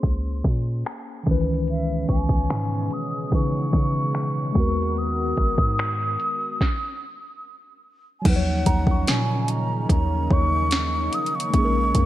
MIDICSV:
0, 0, Header, 1, 7, 480
1, 0, Start_track
1, 0, Tempo, 821918
1, 979, Time_signature, 4, 2, 24, 8
1, 7041, End_track
2, 0, Start_track
2, 0, Title_t, "Celesta"
2, 0, Program_c, 0, 8
2, 1221, Note_on_c, 0, 85, 57
2, 2227, Note_off_c, 0, 85, 0
2, 5059, Note_on_c, 0, 82, 78
2, 5204, Note_on_c, 0, 85, 56
2, 6016, Note_on_c, 0, 73, 56
2, 6066, Note_off_c, 0, 82, 0
2, 6199, Note_off_c, 0, 85, 0
2, 6954, Note_off_c, 0, 73, 0
2, 7041, End_track
3, 0, Start_track
3, 0, Title_t, "Flute"
3, 0, Program_c, 1, 73
3, 0, Note_on_c, 1, 84, 114
3, 263, Note_off_c, 1, 84, 0
3, 994, Note_on_c, 1, 76, 94
3, 1211, Note_off_c, 1, 76, 0
3, 1233, Note_on_c, 1, 80, 98
3, 1710, Note_on_c, 1, 87, 103
3, 1719, Note_off_c, 1, 80, 0
3, 1945, Note_off_c, 1, 87, 0
3, 1953, Note_on_c, 1, 85, 121
3, 2910, Note_on_c, 1, 87, 114
3, 2918, Note_off_c, 1, 85, 0
3, 4345, Note_off_c, 1, 87, 0
3, 4788, Note_on_c, 1, 80, 68
3, 4832, Note_on_c, 1, 78, 95
3, 4840, Note_off_c, 1, 80, 0
3, 5312, Note_on_c, 1, 80, 88
3, 5321, Note_off_c, 1, 78, 0
3, 5551, Note_on_c, 1, 82, 92
3, 5559, Note_off_c, 1, 80, 0
3, 5785, Note_off_c, 1, 82, 0
3, 5789, Note_on_c, 1, 82, 94
3, 6031, Note_on_c, 1, 85, 112
3, 6040, Note_off_c, 1, 82, 0
3, 6509, Note_on_c, 1, 87, 107
3, 6518, Note_off_c, 1, 85, 0
3, 6630, Note_on_c, 1, 85, 108
3, 6638, Note_off_c, 1, 87, 0
3, 7041, Note_off_c, 1, 85, 0
3, 7041, End_track
4, 0, Start_track
4, 0, Title_t, "Tine electric piano"
4, 0, Program_c, 2, 4
4, 0, Control_c, 2, 64, 127
4, 0, Note_on_c, 2, 58, 62
4, 0, Note_on_c, 2, 61, 60
4, 0, Note_on_c, 2, 68, 60
4, 0, Note_on_c, 2, 72, 74
4, 707, Note_off_c, 2, 58, 0
4, 715, Note_off_c, 2, 61, 0
4, 721, Note_on_c, 2, 51, 61
4, 723, Note_off_c, 2, 68, 0
4, 737, Note_on_c, 2, 61, 76
4, 744, Note_off_c, 2, 51, 0
4, 746, Control_c, 2, 64, 0
4, 749, Note_off_c, 2, 72, 0
4, 751, Note_on_c, 2, 51, 71
4, 759, Note_on_c, 2, 52, 82
4, 766, Note_on_c, 2, 71, 91
4, 850, Control_c, 2, 64, 127
4, 1915, Note_off_c, 2, 61, 0
4, 1922, Note_off_c, 2, 51, 0
4, 1926, Note_off_c, 2, 52, 0
4, 1929, Note_off_c, 2, 71, 0
4, 1932, Note_on_c, 2, 52, 51
4, 1940, Note_on_c, 2, 61, 45
4, 1947, Note_on_c, 2, 63, 46
4, 1955, Note_on_c, 2, 71, 55
4, 2641, Note_on_c, 2, 56, 81
4, 2656, Note_off_c, 2, 52, 0
4, 2657, Note_on_c, 2, 59, 70
4, 2660, Note_off_c, 2, 61, 0
4, 2663, Note_off_c, 2, 63, 0
4, 2666, Control_c, 2, 64, 0
4, 2667, Note_off_c, 2, 71, 0
4, 2671, Note_on_c, 2, 66, 76
4, 2686, Note_on_c, 2, 70, 85
4, 2761, Control_c, 2, 64, 127
4, 3827, Note_off_c, 2, 56, 0
4, 3835, Note_off_c, 2, 59, 0
4, 3842, Note_off_c, 2, 66, 0
4, 3850, Note_off_c, 2, 70, 0
4, 3866, Control_c, 2, 64, 0
4, 4799, Note_on_c, 2, 54, 66
4, 4815, Note_on_c, 2, 63, 60
4, 4829, Note_on_c, 2, 53, 64
4, 4845, Note_on_c, 2, 71, 60
4, 4870, Note_off_c, 2, 71, 0
4, 4883, Note_on_c, 2, 73, 77
4, 4934, Control_c, 2, 64, 127
4, 6706, Note_off_c, 2, 54, 0
4, 6714, Note_off_c, 2, 63, 0
4, 6718, Note_on_c, 2, 56, 68
4, 6721, Note_off_c, 2, 53, 0
4, 6733, Note_on_c, 2, 58, 63
4, 6747, Control_c, 2, 64, 0
4, 6748, Note_off_c, 2, 73, 0
4, 6748, Note_on_c, 2, 61, 64
4, 6763, Note_on_c, 2, 68, 60
4, 6789, Note_off_c, 2, 68, 0
4, 6801, Note_on_c, 2, 70, 80
4, 6854, Control_c, 2, 64, 127
4, 7041, Note_off_c, 2, 56, 0
4, 7041, Note_off_c, 2, 58, 0
4, 7041, Note_off_c, 2, 61, 0
4, 7041, Note_off_c, 2, 70, 0
4, 7041, End_track
5, 0, Start_track
5, 0, Title_t, "Analog synth pad"
5, 0, Program_c, 3, 89
5, 980, Note_on_c, 3, 47, 75
5, 981, Note_on_c, 3, 61, 85
5, 982, Note_on_c, 3, 49, 78
5, 982, Note_on_c, 3, 56, 75
5, 982, Note_on_c, 3, 59, 73
5, 2643, Note_off_c, 3, 47, 0
5, 2643, Note_off_c, 3, 61, 0
5, 2644, Note_off_c, 3, 49, 0
5, 2659, Note_on_c, 3, 51, 81
5, 2659, Note_on_c, 3, 66, 87
5, 2659, Note_on_c, 3, 70, 77
5, 3837, Note_off_c, 3, 56, 0
5, 3838, Note_off_c, 3, 59, 0
5, 3847, Note_off_c, 3, 51, 0
5, 3847, Note_off_c, 3, 66, 0
5, 3847, Note_off_c, 3, 70, 0
5, 4820, Note_on_c, 3, 49, 71
5, 4820, Note_on_c, 3, 63, 92
5, 4821, Note_on_c, 3, 51, 80
5, 4821, Note_on_c, 3, 58, 70
5, 4821, Note_on_c, 3, 61, 73
5, 6720, Note_off_c, 3, 49, 0
5, 6721, Note_off_c, 3, 51, 0
5, 6721, Note_off_c, 3, 61, 0
5, 6739, Note_on_c, 3, 49, 77
5, 6739, Note_on_c, 3, 56, 74
5, 6740, Note_on_c, 3, 61, 75
5, 7041, Note_off_c, 3, 49, 0
5, 7041, Note_off_c, 3, 56, 0
5, 7041, Note_off_c, 3, 58, 0
5, 7041, Note_off_c, 3, 61, 0
5, 7041, Note_off_c, 3, 63, 0
5, 7041, End_track
6, 0, Start_track
6, 0, Title_t, "808-style bass"
6, 0, Program_c, 4, 38
6, 20, Note_on_c, 4, 37, 100
6, 250, Note_off_c, 4, 37, 0
6, 261, Note_on_c, 4, 46, 108
6, 491, Note_off_c, 4, 46, 0
6, 741, Note_on_c, 4, 37, 101
6, 1201, Note_off_c, 4, 37, 0
6, 1221, Note_on_c, 4, 37, 100
6, 1336, Note_off_c, 4, 37, 0
6, 1340, Note_on_c, 4, 37, 102
6, 1455, Note_off_c, 4, 37, 0
6, 1462, Note_on_c, 4, 44, 98
6, 1691, Note_off_c, 4, 44, 0
6, 1940, Note_on_c, 4, 49, 100
6, 2170, Note_off_c, 4, 49, 0
6, 2180, Note_on_c, 4, 49, 102
6, 2640, Note_off_c, 4, 49, 0
6, 2660, Note_on_c, 4, 39, 98
6, 3120, Note_off_c, 4, 39, 0
6, 3141, Note_on_c, 4, 32, 102
6, 3255, Note_off_c, 4, 32, 0
6, 3260, Note_on_c, 4, 44, 91
6, 3605, Note_off_c, 4, 44, 0
6, 4820, Note_on_c, 4, 39, 110
6, 5050, Note_off_c, 4, 39, 0
6, 5061, Note_on_c, 4, 39, 99
6, 5291, Note_off_c, 4, 39, 0
6, 5302, Note_on_c, 4, 46, 99
6, 5762, Note_off_c, 4, 46, 0
6, 5780, Note_on_c, 4, 39, 102
6, 6010, Note_off_c, 4, 39, 0
6, 6020, Note_on_c, 4, 39, 105
6, 6481, Note_off_c, 4, 39, 0
6, 6739, Note_on_c, 4, 34, 115
6, 6970, Note_off_c, 4, 34, 0
6, 6980, Note_on_c, 4, 41, 107
6, 7041, Note_off_c, 4, 41, 0
6, 7041, End_track
7, 0, Start_track
7, 0, Title_t, "Drums"
7, 19, Note_on_c, 9, 36, 94
7, 20, Note_on_c, 9, 42, 67
7, 77, Note_off_c, 9, 36, 0
7, 79, Note_off_c, 9, 42, 0
7, 259, Note_on_c, 9, 36, 91
7, 318, Note_off_c, 9, 36, 0
7, 496, Note_on_c, 9, 42, 62
7, 505, Note_on_c, 9, 26, 111
7, 554, Note_off_c, 9, 42, 0
7, 563, Note_off_c, 9, 26, 0
7, 740, Note_on_c, 9, 36, 105
7, 741, Note_on_c, 9, 42, 41
7, 798, Note_off_c, 9, 36, 0
7, 800, Note_off_c, 9, 42, 0
7, 820, Note_on_c, 9, 42, 57
7, 879, Note_off_c, 9, 42, 0
7, 899, Note_on_c, 9, 42, 70
7, 958, Note_off_c, 9, 42, 0
7, 979, Note_on_c, 9, 42, 73
7, 1037, Note_off_c, 9, 42, 0
7, 1218, Note_on_c, 9, 42, 72
7, 1219, Note_on_c, 9, 36, 84
7, 1276, Note_off_c, 9, 42, 0
7, 1278, Note_off_c, 9, 36, 0
7, 1338, Note_on_c, 9, 36, 90
7, 1397, Note_off_c, 9, 36, 0
7, 1458, Note_on_c, 9, 42, 71
7, 1462, Note_on_c, 9, 26, 101
7, 1516, Note_off_c, 9, 42, 0
7, 1521, Note_off_c, 9, 26, 0
7, 1696, Note_on_c, 9, 42, 66
7, 1755, Note_off_c, 9, 42, 0
7, 1938, Note_on_c, 9, 36, 99
7, 1940, Note_on_c, 9, 42, 65
7, 1997, Note_off_c, 9, 36, 0
7, 1998, Note_off_c, 9, 42, 0
7, 2179, Note_on_c, 9, 36, 93
7, 2237, Note_off_c, 9, 36, 0
7, 2413, Note_on_c, 9, 42, 63
7, 2422, Note_on_c, 9, 26, 115
7, 2472, Note_off_c, 9, 42, 0
7, 2480, Note_off_c, 9, 26, 0
7, 2659, Note_on_c, 9, 36, 108
7, 2659, Note_on_c, 9, 42, 39
7, 2717, Note_off_c, 9, 36, 0
7, 2717, Note_off_c, 9, 42, 0
7, 2738, Note_on_c, 9, 42, 57
7, 2796, Note_off_c, 9, 42, 0
7, 2818, Note_on_c, 9, 42, 68
7, 2876, Note_off_c, 9, 42, 0
7, 2898, Note_on_c, 9, 42, 73
7, 2957, Note_off_c, 9, 42, 0
7, 3137, Note_on_c, 9, 42, 64
7, 3139, Note_on_c, 9, 36, 84
7, 3196, Note_off_c, 9, 42, 0
7, 3197, Note_off_c, 9, 36, 0
7, 3258, Note_on_c, 9, 36, 93
7, 3258, Note_on_c, 9, 42, 67
7, 3316, Note_off_c, 9, 42, 0
7, 3317, Note_off_c, 9, 36, 0
7, 3378, Note_on_c, 9, 42, 77
7, 3383, Note_on_c, 9, 26, 110
7, 3437, Note_off_c, 9, 42, 0
7, 3441, Note_off_c, 9, 26, 0
7, 3619, Note_on_c, 9, 42, 65
7, 3677, Note_off_c, 9, 42, 0
7, 3859, Note_on_c, 9, 36, 103
7, 3864, Note_on_c, 9, 38, 84
7, 3918, Note_off_c, 9, 36, 0
7, 3922, Note_off_c, 9, 38, 0
7, 4819, Note_on_c, 9, 36, 118
7, 4819, Note_on_c, 9, 42, 75
7, 4819, Note_on_c, 9, 49, 97
7, 4877, Note_off_c, 9, 36, 0
7, 4877, Note_off_c, 9, 42, 0
7, 4877, Note_off_c, 9, 49, 0
7, 5058, Note_on_c, 9, 42, 78
7, 5060, Note_on_c, 9, 36, 85
7, 5117, Note_off_c, 9, 42, 0
7, 5118, Note_off_c, 9, 36, 0
7, 5179, Note_on_c, 9, 36, 94
7, 5237, Note_off_c, 9, 36, 0
7, 5300, Note_on_c, 9, 42, 75
7, 5304, Note_on_c, 9, 38, 108
7, 5358, Note_off_c, 9, 42, 0
7, 5363, Note_off_c, 9, 38, 0
7, 5537, Note_on_c, 9, 42, 68
7, 5595, Note_off_c, 9, 42, 0
7, 5778, Note_on_c, 9, 36, 97
7, 5780, Note_on_c, 9, 42, 74
7, 5837, Note_off_c, 9, 36, 0
7, 5839, Note_off_c, 9, 42, 0
7, 6018, Note_on_c, 9, 36, 94
7, 6077, Note_off_c, 9, 36, 0
7, 6254, Note_on_c, 9, 42, 67
7, 6263, Note_on_c, 9, 38, 114
7, 6313, Note_off_c, 9, 42, 0
7, 6321, Note_off_c, 9, 38, 0
7, 6498, Note_on_c, 9, 42, 44
7, 6498, Note_on_c, 9, 46, 76
7, 6556, Note_off_c, 9, 42, 0
7, 6556, Note_off_c, 9, 46, 0
7, 6578, Note_on_c, 9, 42, 57
7, 6636, Note_off_c, 9, 42, 0
7, 6657, Note_on_c, 9, 42, 74
7, 6716, Note_off_c, 9, 42, 0
7, 6737, Note_on_c, 9, 42, 77
7, 6738, Note_on_c, 9, 36, 119
7, 6795, Note_off_c, 9, 42, 0
7, 6796, Note_off_c, 9, 36, 0
7, 6977, Note_on_c, 9, 42, 76
7, 6978, Note_on_c, 9, 36, 89
7, 7035, Note_off_c, 9, 42, 0
7, 7037, Note_off_c, 9, 36, 0
7, 7041, End_track
0, 0, End_of_file